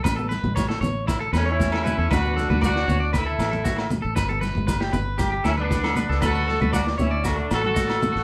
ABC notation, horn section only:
X:1
M:4/4
L:1/16
Q:1/4=117
K:D
V:1 name="Horn section"
z8 z2 [A,C] [CE]4- [CE] | [DF]4 [DF]4 [A,E]6 z2 | z8 z2 [CE] [B,D]4- [B,D] | [FA]4 [DF]2 [CE]2 [A,D]2 [FA] [FA]4- [FA] |]